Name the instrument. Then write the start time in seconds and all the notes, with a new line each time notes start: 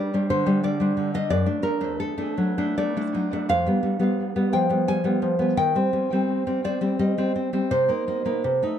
nylon-string guitar
Already playing: G3 D4 D5
0.14 G3 D4
0.30 D3 C5
0.46 G3 D4
0.63 G3 D5
0.80 G3 D4
0.97 D3
1.14 G3 D4 D#5
1.30 F#2 D5
1.46 A3 D4
1.62 A3 A#4
1.81 A3 D4
2.00 A4
2.18 A3 D4
2.38 F#3
2.58 A3 D4
2.78 A3 D5
2.97 A3 D4
3.15 F#3
3.33 A3 D4
3.49 F2 F5
3.66 G3 B3
3.83 G3
3.99 G3 B3
4.36 G3 B3
4.53 F3 G5
4.70 G3 B3
4.88 G3 G#5
5.04 G3 B3
5.22 F3
5.39 G3 B3
5.57 D#3 G5
5.75 G3 C4
5.93 G3
6.12 G3 C4
6.47 G3 C4
6.64 C4 D5
6.81 G3 C4
6.99 G3 D#5
7.18 G3 C4
7.36 C4
7.53 G3 C4
7.71 C3 C5
7.89 A#3 D#4
8.08 A#3
8.26 A#3 D#4
8.44 C3
8.63 A3 D#4